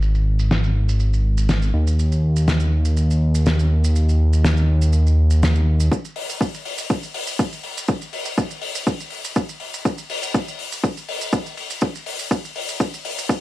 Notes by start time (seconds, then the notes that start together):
Already playing: G#1
0.02 shaker
0.15 shaker
0.39 shaker
0.51 snare, shaker
0.64 shaker
0.89 shaker
1.00 shaker
1.13 shaker
1.38 shaker
1.49 snare, shaker
1.62 shaker
1.74 D#2
1.87 shaker
1.99 shaker
2.12 shaker
2.36 shaker
2.48 snare, shaker
2.60 shaker
2.85 shaker
2.97 shaker
3.11 shaker
3.35 shaker
3.46 snare, shaker
3.59 shaker
3.84 shaker
3.96 shaker
4.09 shaker
4.33 shaker
4.45 snare, shaker
4.57 shaker
4.82 shaker
4.93 shaker
5.07 shaker
5.30 shaker
5.43 snare, shaker
5.55 shaker
5.80 shaker
5.92 kick, shaker
6.05 shaker
6.16 open hi-hat
6.29 shaker
6.41 kick, shaker
6.54 shaker
6.65 open hi-hat
6.78 shaker
6.90 kick, shaker
7.03 shaker
7.14 open hi-hat
7.27 shaker
7.39 kick, shaker
7.53 shaker
7.63 open hi-hat
7.78 shaker
7.88 kick, shaker
8.02 shaker
8.13 open hi-hat
8.25 shaker
8.38 kick, shaker
8.50 shaker
8.61 open hi-hat
8.75 shaker
8.87 kick, shaker
9.00 shaker
9.10 open hi-hat
9.25 shaker
9.36 kick, shaker
9.49 shaker
9.60 open hi-hat
9.74 shaker
9.85 kick, shaker
9.98 shaker
10.10 open hi-hat
10.23 shaker
10.34 kick, shaker
10.48 shaker
10.59 open hi-hat
10.72 shaker
10.84 kick, shaker
10.97 shaker
11.09 open hi-hat
11.21 shaker
11.32 kick, shaker
11.46 shaker
11.57 open hi-hat
11.70 shaker
11.81 kick, shaker
11.95 shaker
12.06 open hi-hat
12.19 shaker
12.31 kick, shaker
12.45 shaker
12.56 open hi-hat
12.69 shaker
12.80 kick, shaker
12.94 shaker
13.05 open hi-hat
13.18 shaker
13.29 kick, shaker